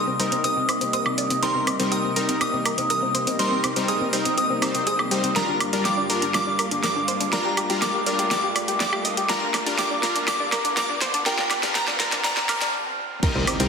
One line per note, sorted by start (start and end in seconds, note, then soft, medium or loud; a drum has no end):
0.00 5.32 C3 medium
0.00 0.17 G3 medium
0.00 12.70 G3 medium
0.00 12.70 A#3 medium
0.00 0.17 C4 medium
0.00 0.17 D#4 medium
0.00 5.32 D#4 medium
0.00 0.17 A#4 loud
0.00 0.41 D#6 loud
0.00 riser medium
0.07 0.15 C4 medium
0.20 1.40 G3 medium
0.20 1.40 C4 medium
0.20 1.40 D#4 medium
0.20 1.40 A#4 medium
0.20 0.28 C5 medium
0.20 open hi-hat loud
0.32 0.40 C4 medium
0.32 closed hi-hat medium
0.44 0.52 C4 medium
0.44 0.90 D#6 loud
0.44 closed hi-hat medium
0.57 0.64 C4 medium
0.69 0.77 C5 medium
0.69 open hi-hat loud
0.69 high woodblock medium
0.81 0.89 C4 medium
0.81 closed hi-hat medium
0.93 1.01 C5 medium
0.93 1.44 D#6 loud
0.93 closed hi-hat medium
1.06 1.14 C4 medium
1.06 high woodblock medium
1.18 1.26 D5 medium
1.18 open hi-hat loud
1.30 1.38 C4 medium
1.30 closed hi-hat medium
1.43 1.77 G3 medium
1.43 1.77 C4 medium
1.43 1.77 D#4 medium
1.43 1.51 A#4 medium
1.43 1.77 A#4 loud
1.43 1.93 C6 loud
1.43 closed hi-hat soft
1.55 1.63 C4 medium
1.67 1.75 C4 medium
1.67 open hi-hat loud
1.67 high woodblock medium
1.80 2.13 G3 medium
1.80 1.87 C4 medium
1.80 2.13 C4 medium
1.80 2.13 D#4 medium
1.80 2.13 A#4 loud
1.80 closed hi-hat medium
1.92 2.00 G4 medium
1.92 2.37 D#6 loud
1.92 closed hi-hat soft
2.04 2.12 C4 medium
2.16 3.36 G3 medium
2.16 3.36 C4 medium
2.16 3.36 D#4 medium
2.16 2.24 A#4 medium
2.16 3.36 A#4 medium
2.16 open hi-hat loud
2.29 2.37 C4 medium
2.29 closed hi-hat medium
2.41 2.49 C4 medium
2.41 2.89 D#6 loud
2.41 closed hi-hat soft
2.41 high woodblock medium
2.53 2.61 C4 medium
2.66 2.73 A#4 medium
2.66 open hi-hat loud
2.66 high woodblock medium
2.78 2.86 C4 medium
2.78 closed hi-hat medium
2.90 2.98 A#4 medium
2.90 3.41 D#6 loud
2.90 closed hi-hat medium
3.03 3.10 C4 medium
3.15 3.23 C5 medium
3.15 open hi-hat loud
3.27 3.35 C4 medium
3.27 closed hi-hat medium
3.39 3.73 G3 medium
3.39 3.73 C4 medium
3.39 3.73 D#4 medium
3.39 3.73 A#4 loud
3.39 3.47 C5 loud
3.39 3.90 C6 loud
3.39 closed hi-hat soft
3.52 3.60 C4 medium
3.64 3.72 C4 medium
3.64 open hi-hat loud
3.64 high woodblock medium
3.76 4.10 G3 medium
3.76 4.10 C4 medium
3.76 3.84 C4 medium
3.76 4.10 D#4 medium
3.76 4.10 A#4 loud
3.76 closed hi-hat medium
3.88 3.96 G#4 medium
3.88 4.36 D#6 loud
3.88 closed hi-hat soft
4.01 4.09 C4 medium
4.13 4.60 G3 medium
4.13 4.60 C4 medium
4.13 4.60 D#4 medium
4.13 4.60 A#4 medium
4.13 4.21 C5 medium
4.13 open hi-hat loud
4.25 4.33 C4 medium
4.25 closed hi-hat medium
4.38 4.46 C4 medium
4.38 4.86 D#6 loud
4.38 closed hi-hat soft
4.50 4.58 C4 medium
4.62 5.08 G3 medium
4.62 5.08 C4 medium
4.62 5.08 D#4 medium
4.62 4.70 A#4 medium
4.62 5.08 C5 medium
4.62 open hi-hat loud
4.62 high woodblock medium
4.75 4.82 C4 medium
4.75 closed hi-hat medium
4.87 4.95 G#4 medium
4.87 5.32 D#6 loud
4.87 5.33 D#6 loud
4.87 closed hi-hat soft
4.99 5.07 C4 medium
4.99 high woodblock medium
5.11 5.33 G3 medium
5.11 5.33 C4 medium
5.11 5.33 D#4 medium
5.11 5.19 G4 medium
5.11 5.33 C5 loud
5.11 open hi-hat loud
5.24 5.32 C4 medium
5.24 closed hi-hat medium
5.36 12.70 G2 medium
5.36 5.70 G3 medium
5.36 5.70 D4 medium
5.36 12.70 F4 medium
5.36 5.70 F4 medium
5.36 5.70 A#4 loud
5.36 5.44 A#4 medium
5.36 5.82 A#5 medium
5.36 5.82 A#5 loud
5.36 snare soft
5.36 closed hi-hat soft
5.48 5.56 D4 medium
5.61 5.69 D4 medium
5.61 open hi-hat loud
5.61 high woodblock medium
5.73 6.07 G3 medium
5.73 6.07 D4 medium
5.73 5.81 D4 medium
5.73 6.07 F4 medium
5.73 6.07 A#4 loud
5.73 closed hi-hat medium
5.85 5.93 G4 medium
5.85 6.33 D6 loud
5.85 snare soft
5.85 closed hi-hat medium
5.98 6.05 D4 medium
6.10 7.30 G3 medium
6.10 7.30 D4 medium
6.10 7.30 F4 medium
6.10 7.30 A#4 medium
6.10 6.18 A#4 medium
6.10 open hi-hat loud
6.22 6.30 D4 medium
6.22 closed hi-hat medium
6.34 6.42 D4 medium
6.34 6.80 D6 loud
6.34 snare medium
6.34 closed hi-hat medium
6.34 high woodblock medium
6.47 6.55 D4 medium
6.59 6.67 A#4 medium
6.59 open hi-hat loud
6.59 high woodblock medium
6.71 6.79 D4 medium
6.71 closed hi-hat medium
6.84 6.92 A#4 medium
6.84 7.34 D6 medium
6.84 7.34 D6 loud
6.84 snare medium
6.84 closed hi-hat soft
6.96 7.04 D4 medium
7.08 7.16 C5 medium
7.08 open hi-hat loud
7.21 7.28 D4 medium
7.21 closed hi-hat medium
7.33 7.67 G3 medium
7.33 7.67 D4 medium
7.33 7.67 F4 medium
7.33 7.67 A#4 loud
7.33 7.41 D5 loud
7.33 7.83 A#5 loud
7.33 snare medium
7.33 closed hi-hat medium
7.45 7.53 G4 medium
7.57 7.65 G4 medium
7.57 open hi-hat loud
7.57 high woodblock medium
7.70 8.04 G3 medium
7.70 8.04 D4 medium
7.70 8.04 F4 medium
7.70 7.77 G4 medium
7.70 8.04 A#4 loud
7.70 closed hi-hat medium
7.82 7.90 A#4 medium
7.82 8.28 D6 loud
7.82 snare medium
7.82 closed hi-hat medium
7.94 8.02 G4 medium
8.06 9.27 G3 medium
8.06 9.27 D4 medium
8.06 9.27 F4 medium
8.06 9.27 A#4 medium
8.06 8.14 D5 medium
8.06 open hi-hat loud
8.19 8.27 G4 medium
8.19 closed hi-hat medium
8.31 8.39 G4 medium
8.31 8.79 D6 loud
8.31 snare medium
8.31 closed hi-hat medium
8.44 8.51 G4 medium
8.56 8.64 D5 medium
8.56 open hi-hat loud
8.56 high woodblock medium
8.68 8.76 G4 medium
8.68 closed hi-hat medium
8.80 8.88 D5 medium
8.80 9.26 D6 loud
8.80 9.26 D6 medium
8.80 snare medium
8.80 closed hi-hat medium
8.93 9.00 G4 medium
8.93 high woodblock medium
9.05 9.13 D#5 medium
9.05 open hi-hat loud
9.17 9.25 G4 medium
9.17 closed hi-hat medium
9.29 9.63 G3 medium
9.29 9.63 D4 medium
9.29 9.63 F4 medium
9.29 9.63 A#4 loud
9.29 9.37 A#4 loud
9.29 9.80 A#5 loud
9.29 snare medium
9.29 closed hi-hat medium
9.42 9.50 D4 medium
9.54 9.62 D4 medium
9.54 snare medium
9.54 open hi-hat loud
9.54 high woodblock medium
9.66 10.00 G3 medium
9.66 9.74 D4 medium
9.66 10.00 D4 medium
9.66 10.00 F4 medium
9.66 10.00 A#4 loud
9.66 closed hi-hat medium
9.79 9.87 G4 medium
9.79 10.27 D6 loud
9.79 snare medium
9.79 closed hi-hat medium
9.91 9.99 D4 medium
10.03 11.23 G3 medium
10.03 11.23 D4 medium
10.03 11.23 F4 medium
10.03 11.23 A#4 medium
10.03 10.11 A#4 medium
10.03 snare medium
10.03 open hi-hat loud
10.16 10.23 D4 medium
10.16 closed hi-hat medium
10.28 10.36 D4 medium
10.28 10.76 D6 loud
10.28 snare medium
10.28 closed hi-hat medium
10.28 high woodblock medium
10.40 10.48 D4 medium
10.52 10.60 A#4 medium
10.52 snare medium
10.52 open hi-hat loud
10.52 high woodblock medium
10.65 10.73 D4 medium
10.65 closed hi-hat medium
10.77 10.85 A#4 medium
10.77 11.28 D6 loud
10.77 snare medium
10.77 closed hi-hat medium
10.89 10.97 D4 medium
11.01 11.10 C5 medium
11.01 snare medium
11.01 open hi-hat loud
11.14 11.22 D4 medium
11.14 closed hi-hat medium
11.26 11.60 G3 medium
11.26 11.60 D4 medium
11.26 11.60 F4 medium
11.26 11.60 A#4 loud
11.26 11.34 A#4 loud
11.26 11.77 G5 medium
11.26 snare medium
11.26 closed hi-hat medium
11.39 11.46 D4 medium
11.39 snare medium
11.51 11.59 D4 medium
11.51 snare medium
11.51 open hi-hat loud
11.51 high woodblock medium
11.63 11.97 G3 medium
11.63 11.97 D4 medium
11.63 11.71 D4 medium
11.63 11.97 F4 medium
11.63 11.97 A#4 loud
11.63 snare medium
11.63 closed hi-hat medium
11.75 11.83 G4 medium
11.75 12.21 A#5 medium
11.75 snare loud
11.75 closed hi-hat medium
11.88 11.96 D4 medium
11.88 snare medium
12.00 13.20 G3 medium
12.00 13.20 D4 medium
12.00 13.20 F4 medium
12.00 12.08 A#4 loud
12.00 13.20 A#4 medium
12.00 snare medium
12.00 open hi-hat loud
12.12 12.20 D4 medium
12.12 snare medium
12.12 closed hi-hat medium
12.24 12.32 D4 medium
12.24 12.70 A#5 medium
12.24 snare loud
12.24 closed hi-hat medium
12.37 12.45 D4 medium
12.37 snare medium
12.49 12.57 A#4 medium
12.49 12.72 F6 loud
12.49 snare loud
12.49 open hi-hat loud
12.49 high woodblock medium
12.62 12.69 D4 medium
12.62 snare medium
12.62 closed hi-hat medium
13.23 13.68 C3 medium
13.23 13.57 G3 medium
13.23 13.68 G3 medium
13.23 13.68 A#3 medium
13.23 13.57 C4 medium
13.23 13.57 D#4 medium
13.23 13.68 D#4 medium
13.23 13.57 A#4 loud
13.23 13.31 A#4 loud
13.23 kick loud
13.23 closed hi-hat medium
13.23 crash loud
13.23 impact medium
13.35 13.45 C2 medium
13.35 13.43 C4 medium
13.47 13.55 C4 medium
13.47 open hi-hat loud
13.47 high woodblock medium
13.60 13.68 C2 medium
13.60 13.68 G3 medium
13.60 13.68 C4 medium
13.60 13.68 D#4 medium
13.60 13.68 A#4 loud
13.60 closed hi-hat medium